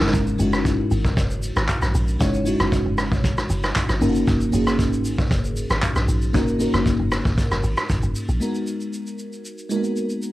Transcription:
Already playing: G#3 C#4 D#4 E4 A#4
0.01 F#1, snare
0.07 snare
0.14 F#1, kick, hi-hat pedal, shaker
0.27 shaker
0.38 F#1 G#3 C#4 D#4 E4 F#4, open hi-hat, shaker
0.53 cross-stick, shaker
0.65 kick, hi-hat pedal, shaker
0.91 G#1, open hi-hat, shaker
1.05 kick, shaker
1.17 F#1, kick, hi-hat pedal, shaker
1.30 shaker
1.43 open hi-hat, shaker
1.56 G#1, cross-stick, shaker
1.69 kick, clap, hi-hat pedal, shaker
1.82 A#1, cross-stick, shaker
1.95 A#1, open hi-hat, shaker
2.08 shaker
2.19 F#1 G#3 C#4 D#4 E4 C#5, kick, hi-hat pedal, shaker
2.34 shaker
2.45 G#3 C#4 D#4 E4 F#4, open hi-hat, shaker
2.60 F#1, cross-stick, shaker
2.72 kick, hi-hat pedal, shaker
2.86 F#1
2.98 cross-stick, open hi-hat, shaker
3.12 G#1, kick, shaker
3.24 kick, hi-hat pedal, shaker
3.38 cross-stick, shaker
3.50 F#1, open hi-hat, shaker
3.63 cross-stick, shaker
3.76 kick, clap, hi-hat pedal, shaker
3.89 G#1, cross-stick, shaker
4.00 F#1 A#3 C#4 D#4 F4 A#4, open hi-hat, shaker
4.08 F#4
4.15 shaker
4.27 F#1, kick, hi-hat pedal, shaker
4.41 shaker
4.52 F#1 A#3 C#4 D#4 F#4 G#4, open hi-hat, shaker
4.67 cross-stick, shaker
4.79 kick, hi-hat pedal, shaker
4.93 shaker
5.05 G#1, open hi-hat, shaker
5.18 kick, shaker
5.31 F#1, kick, hi-hat pedal, shaker
5.44 shaker
5.56 open hi-hat, shaker
5.70 G#1, cross-stick, shaker
5.82 kick, clap, hi-hat pedal, mid tom, shaker
5.96 A#1, cross-stick, shaker
6.08 A#1, open hi-hat, shaker
6.22 shaker
6.33 F#1 A#3 C#4 D#4 F#4 A#4, kick, hi-hat pedal, shaker
6.48 shaker
6.59 A#3 C#4 D#4 F#4 A#4, open hi-hat, shaker
6.74 F#1, cross-stick, shaker
6.86 kick, hi-hat pedal, shaker
6.99 F#1
7.12 cross-stick, open hi-hat, shaker
7.25 G#1, kick, shaker
7.38 kick, hi-hat pedal, shaker
7.51 F#1, cross-stick, shaker
7.63 G#1, open hi-hat, shaker
7.77 cross-stick, shaker
7.89 G#1, kick, hi-hat pedal, shaker
8.03 F#1, shaker
8.15 open hi-hat, shaker
8.29 A#1, shaker
8.40 G#3 B3 D#4 F#4 A#4, shaker
8.55 shaker
8.67 shaker
8.81 shaker
8.93 shaker
9.07 shaker
9.19 shaker
9.33 shaker
9.45 shaker
9.58 shaker
9.69 G#3 A#3 D#4 F#4 A#4, shaker
9.76 B3
9.84 shaker
9.96 shaker
10.09 shaker
10.22 shaker

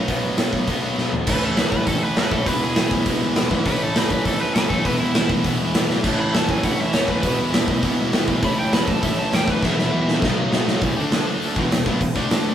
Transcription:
Already playing: B2 F#3 B3 D#4
0.07 B1 B2 F#3 B3, kick, open hi-hat
0.24 A1
0.37 B1 B2 F#3 B3, snare, open hi-hat
0.53 B1, kick
0.67 B1 B2 F#3 B3 D#4, kick, open hi-hat
0.82 B1 B2 F#3 B3 D#4
0.98 B1 B2 F#3 B3, snare
1.12 G#1, floor tom
1.27 A1 A2 E3 A3 C#4 E4 B4, kick, crash
1.44 A4
1.57 E2 A2 E3 A3 C#4 E4 B4, snare, open hi-hat
1.72 A1 B4, kick
1.87 A1 A2 E3 A3 C#4 E4 A4, kick, open hi-hat
2.01 A1 B4
2.16 E2 A2 E3 A3 C#4 E4 B4, snare, open hi-hat
2.31 D#1 A2 E3 A3 A4, kick
2.46 E1 E2 B2 E3 G#3 B3 E4 B4, kick, open hi-hat
2.62 E1 G#4
2.76 E1 E3 G#3 B3 E4, snare, open hi-hat
2.91 E1, kick
3.06 E1 E3 G#3 B3 E4, kick, open hi-hat
3.21 E1
3.36 E1 E3 G#3 B3 E4, snare, open hi-hat
3.50 G#1 E2 B2 E3, kick
3.65 A1 A2 E3 A3 C#4 E4 B4, kick, open hi-hat
3.84 A4
3.95 E2 A2 E3 A3 C#4 E4 B4, snare, open hi-hat
4.10 A1 B4, kick
4.25 A1 A2 E3 A3 C#4 E4 A4, kick, open hi-hat
4.40 A1 B4
4.55 E2 A2 E3 A3 C#4 E4 B4, snare, open hi-hat
4.69 E2 E3 A3 A4, kick
4.74 A2
4.84 E1 E2 B2 E3 G#3 B3 E4 B4, kick, open hi-hat
5.00 E1 E4
5.14 E1 E3 G#3 B3 E4, snare, open hi-hat
5.30 E1, kick
5.44 E1 E3 G#3 B3 E4, kick, open hi-hat
5.60 E1
5.74 E1 E3 G#3 B3 E4, snare, open hi-hat
5.87 E1 E2 B2 E3, snare
6.03 A1 A2 E3 A3 C#4 E4, kick, crash
6.20 B5
6.33 E2 A2 E3 A3 C#4 E4 A5, snare, open hi-hat
6.49 A1 G#5, kick
6.63 A1 A2 E3 A3 C#4 E4 F#5, kick, open hi-hat
6.81 A1 E5
6.93 E2 A2 E3 A3 C#4 E4 C#5, snare, open hi-hat
7.08 E2 A2 E3 A3 B4, kick
7.22 E1 E2 B2 E3 G#3 B3 E4, kick, open hi-hat
7.39 E1
7.52 E1 E3 G#3 B3 E4, snare, open hi-hat
7.68 E1, kick
7.82 E1 E3 G#3 B3 E4, kick, open hi-hat
7.99 E1
8.12 E1 E3 G#3 B3 E4, snare, open hi-hat
8.28 E1 E2 B2 E3, kick
8.42 A1 A2 E3 A3 C#4 E4 B5, kick, open hi-hat
8.59 G5
8.72 E2 A2 E3 A3 C#4 E4 B5, snare, open hi-hat
8.88 A1 A5, kick
9.02 A1 A2 E3 A3 C#4 E4 E5, kick, open hi-hat
9.17 A1 A5
9.31 E2 A2 E3 A3 C#4 E4 G5, snare, open hi-hat
9.47 E2 A2 E3 A3 B4, kick
9.62 E1 E2 B2 E3 G#3 B3 E4 E5, kick, snare
9.77 E1 E5, snare
9.91 E1 E3 G#3 B3 E4
10.07 A#1, snare
10.21 B1 B2 D#3 F#3 B3 D#4, kick, snare
10.37 B1
10.52 B1 B2 D#3 F#3 B3 D#4, snare
10.67 B1, snare
10.81 E1 E2 B2 E3, kick, open hi-hat
10.96 D2 D3 A3 D4
11.11 snare, open hi-hat
11.42 open hi-hat
11.56 E1 E2 B2 E3, kick
11.71 E1 E2 B2, snare, open hi-hat
11.85 B1 B2 F#3 B3, kick
12.00 E1 E2 B2, kick, open hi-hat
12.15 D2 D3 A3 D4, kick
12.31 snare, open hi-hat

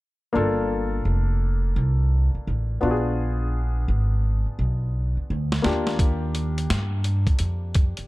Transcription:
0.33 G1 A#3 D4 F4 A4
1.05 F1
1.76 C2
2.35 muted upright bass stroke
2.47 A1
2.81 A#1 B3 D4 F4 F#4
2.91 G#4
3.88 G#1
4.46 muted upright bass stroke
4.59 B1
5.17 muted upright bass stroke
5.30 D2
5.52 snare
5.62 D#2 A#3 D4 F4 G4, snare
5.87 snare
5.99 kick, closed hi-hat
6.35 closed hi-hat
6.58 closed hi-hat
6.70 G2, snare, closed hi-hat
7.04 closed hi-hat
7.27 muted upright bass stroke, kick, closed hi-hat
7.39 F2, closed hi-hat
7.75 kick, closed hi-hat
7.97 muted upright bass stroke, closed hi-hat

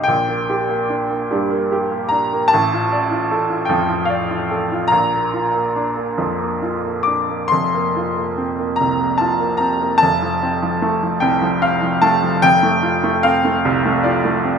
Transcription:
Already playing: D#4 G4
0.04 G5
0.08 A#1 A#2
0.29 A#3
0.50 G4
0.69 A#3
0.90 D4
1.11 A#3
1.31 G2 G3
1.51 A#3
1.72 G4
1.91 A#3
2.09 D4 A#5
2.33 A#3
2.48 A5
2.53 A1 A2
2.73 F4
2.92 D5
3.11 F4
3.31 A4
3.50 F4
3.65 F2 F3 G5
3.90 F4
4.05 F5
4.10 D5
4.31 F4
4.51 A4
4.72 F4
4.88 A#1 A#5
4.92 A#2
5.14 A#3
5.33 F4
5.54 A#3
5.76 D4
5.96 A#3
6.18 F2 F3
6.41 A#3
6.62 F4
6.85 A#3
7.03 D4 D6
7.29 A#3
7.48 F1 F2 C6
7.74 A#3
7.96 F4
8.17 A#3
8.38 C4
8.59 A#3
8.76 A#5
8.80 C2 C3
9.00 A#3
9.18 F4 A5
9.40 A#3
9.57 C4 A#5
9.81 A#3
9.98 A5
10.02 F1 F2
10.22 F3
10.43 C4
10.63 F3
10.82 A3
11.03 F3
11.20 C2 C3 G5
11.42 F3
11.62 C4 F5
11.82 F3
12.02 A3 A5
12.23 F3
12.42 F1 F2 G5
12.63 A3
12.83 F4
13.04 A3
13.23 C4 F5
13.45 A3
13.65 C2 C3
13.86 A3
14.04 F4 D5
14.25 A3
14.45 C4

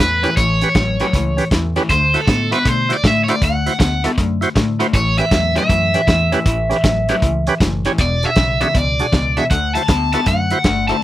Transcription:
0.00 E2 A2 E3 B4, snare
0.23 A2 E3 C#4 G4 B4, snare, closed hi-hat
0.37 A1 A2 E3 C#5, kick, closed hi-hat
0.61 C#4 G4 B4, snare, closed hi-hat
0.75 A1 A2 F#3, kick, snare, closed hi-hat
1.00 A2 F#3 C#4 G4 B4, snare, closed hi-hat
1.13 C#2 A2 E3, kick, snare, closed hi-hat
1.37 C#4 G4 B4, snare, closed hi-hat
1.51 E2 A2 E3, kick, snare, closed hi-hat
1.76 A2 E3 C#4 G4 B4, snare, closed hi-hat
1.89 D2 D3 A3 C5, kick, snare, closed hi-hat
2.14 E4 F#4 A4 C5, snare, closed hi-hat
2.27 A2 D3 B3, kick, snare, closed hi-hat
2.51 D3 B3 E4 F#4 B4 C5, snare, closed hi-hat
2.65 B2 D3 A3 C5, kick, snare, closed hi-hat
2.89 E4 F#4 C5, snare, closed hi-hat
2.93 D5
3.04 A2 D3 A3 E5, kick, snare, closed hi-hat
3.24 C#5
3.28 D3 A3 E4 F#4 C5 D5, snare, closed hi-hat
3.42 D2 D3 A3 F#5, kick, closed hi-hat
3.66 E4 F#4 C5, snare, closed hi-hat
3.79 D2 D3 B3, kick, snare, closed hi-hat
4.04 D3 B3 E4 F#4 A4, snare, closed hi-hat
4.18 F#2 D3 A3, kick, snare, closed hi-hat
4.41 E4 F#4 C5, snare, closed hi-hat
4.55 A2 D3 A3, kick, snare, closed hi-hat
4.79 D3 A3 E4 F#4 C5, snare, closed hi-hat
4.93 A1 A2 E3 C#5, kick, closed hi-hat
5.18 C#4 G4 B4 E5, snare, closed hi-hat
5.31 E2 A2 F#3, kick, snare, closed hi-hat
5.55 A2 F#3 C#4 G4 B4 E5, snare, closed hi-hat
5.69 F#2 A2 E3, kick, snare, closed hi-hat
5.94 C#4 G4 B4, snare, closed hi-hat
6.07 E2 A2 E3, kick, snare, closed hi-hat
6.32 A2 E3 C#4 G4 B4, snare, closed hi-hat
6.46 A1 A2 E3, kick, closed hi-hat
6.69 C#4 G4 B4, snare, closed hi-hat
6.84 A1 A2 F#3, kick, snare, closed hi-hat
7.09 A2 F#3 C#4 G4 B4, snare, closed hi-hat
7.22 C#2 A2 E3, kick, closed hi-hat
7.47 C#4 G4 B4, snare, closed hi-hat
7.60 F#1 A2 E3, kick, snare, closed hi-hat
7.85 A2 E3 C#4 G4 C#5, snare, closed hi-hat
7.98 E1 E2 B2 D5, kick, snare, closed hi-hat
8.23 D4 F#4 G#4 E5, snare, closed hi-hat
8.36 B1 E2 C#3, kick, snare, closed hi-hat
8.61 E2 C#3 D4 F#4 G#4 E5, snare, closed hi-hat
8.74 C#2 E2 B2 D5, kick, closed hi-hat
8.99 D4 F#4 G#4, snare, closed hi-hat
9.12 C#2 E2 B2, kick, snare, closed hi-hat
9.37 E2 B2 D4 F#4 G#4 E5, snare, closed hi-hat
9.50 D2 D3 A3 F#5, kick, closed hi-hat
9.75 E4 F#4 C5 A5, snare, closed hi-hat
9.88 D2 D3 B3, kick, snare, closed hi-hat
10.13 D3 B3 E4 F#4 A4 A5, snare, closed hi-hat
10.26 F#2 D3 A3 F#5, kick, snare, closed hi-hat
10.50 E4 F#4 C5, snare, closed hi-hat
10.64 G1 D3 A3, kick, snare, closed hi-hat
10.88 D3 A3 E4 F#4 C5 A5, snare, closed hi-hat

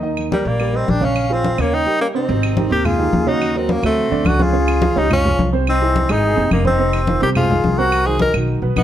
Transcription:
Already playing: D#2
0.03 D#3 D#4 D#5, high conga
0.17 high conga, claves
0.31 G3 G4 A#4, high conga
0.45 A#1 A#3 D5, high conga
0.60 G3 G4 A#4, high conga, claves
0.73 G3 C4 G4 A#4 D#5, high conga
0.88 A#1 D4 G5, high conga
1.01 C#3 C#4 C#5 F5, high conga
1.16 high conga, claves
1.30 F3 C4 F4 G#4 F5, high conga
1.44 high conga
1.58 D#2 C#3 A#3 C#4 C#5, claves
1.73 D#4 G5
1.86 G3 G4 A#4
2.01 A#3 C#4
2.14 C3 C4 D#4 C5
2.28 G#1 C3 C4 C5, high conga
2.43 high conga, claves
2.57 D#3 D#4 G4, high conga
2.70 D#2 C3 C4 G4 A#4 C5
2.85 F4 G#4, high conga, low conga, claves
2.98 D#3 D#4 G4, high conga
3.13 D#2, high conga
3.26 C#3 C#4 D#4 F#4 C#5, high conga
3.41 high conga, claves
3.55 F#3 C4 D#4 F#4 A#4, high conga
3.69 A#3 C#4, high conga
3.83 D2 F#3 A3 C4 F#4 A4, claves
3.97 high conga
4.11 D2 D3 D4 D5, high conga
4.25 C#2 F#4 A4, high conga, claves
4.39 C#3 C#4 F4 G#4 C#5, high conga
4.52 C#3 C#4 C#5, high conga
4.68 high conga, claves
4.81 F3 F4 G#4, high conga
4.96 C#2 C#3 C#4 D#4 G4 C#5
5.11 C#4 F4, high conga, low conga, claves
5.25 F3 F4 G#4, high conga, low conga
5.39 C2, high conga
5.53 C3 C4 C5, high conga
5.67 C4 D#4, high conga, claves
5.81 E3 E4 G#4, high conga
5.96 high conga
6.09 G#1 E3 D#4 E4 G#4, claves
6.23 high conga
6.36 F#1 C3 C4 C5, high conga
6.51 F1 A#3 D#4, high conga, claves
6.65 C3 C4 D#4 C5, high conga
6.79 C3 C4 C5, high conga
6.93 high conga, claves
7.07 D#3 D#4 F4, high conga
7.21 C2 C3 C4 G4 A#4 C5
7.35 F4 G#4, high conga, low conga, claves
7.50 D#3 D#4 F4, high conga, low conga
7.64 C2, high conga
7.78 C3 C4 F#4 A#4 C5, high conga
7.92 high conga, claves
8.06 D#3 D#4 F#4 G#4 C5, high conga
8.19 A#4 D#5, high conga
8.34 B1 D#3 D#4 F#4, claves
8.48 high conga
8.62 B1 B2 B3 B4, high conga
8.76 A#1 B3 D#4, high conga, claves

